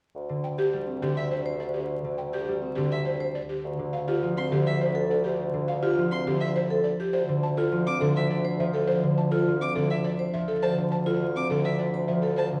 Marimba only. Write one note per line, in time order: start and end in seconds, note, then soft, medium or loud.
0.44 0.63 G5 soft
0.59 0.77 G4 medium
1.02 1.21 G4 medium
1.31 1.50 C5 medium
1.60 1.79 D5 soft
1.74 1.94 G4 soft
2.18 2.37 G5 soft
2.33 2.52 G4 medium
2.75 2.95 G4 medium
3.05 3.25 C5 medium
3.35 3.54 D5 soft
3.49 3.68 G4 medium
3.93 4.12 F5 medium
4.08 4.27 G4 medium
4.52 4.71 G4 medium
4.81 5.00 C5 medium
5.11 5.29 D5 soft
5.24 5.43 G4 medium
5.68 5.87 F5 medium
5.83 6.02 G4 medium
6.27 6.46 G4 medium
6.56 6.75 C5 medium
6.84 7.03 D5 soft
7.00 7.18 G4 medium
7.13 7.33 C5 medium
7.43 7.62 A5 soft
7.57 7.76 A4 medium
8.01 8.20 A4 medium
8.30 8.49 D5 medium
8.60 8.79 E5 soft
8.74 8.93 A4 medium
8.88 9.07 C5 medium
9.18 9.37 A5 soft
9.31 9.51 A4 medium
9.76 9.95 A4 medium
10.04 10.24 D5 medium
10.34 10.53 E5 medium
10.48 10.67 A4 medium
10.63 10.82 C5 medium
10.92 11.11 A5 soft
11.06 11.26 A4 medium
11.50 11.69 A4 medium
11.79 11.98 D5 medium
12.08 12.28 E5 soft
12.22 12.42 A4 soft
12.36 12.56 C5 medium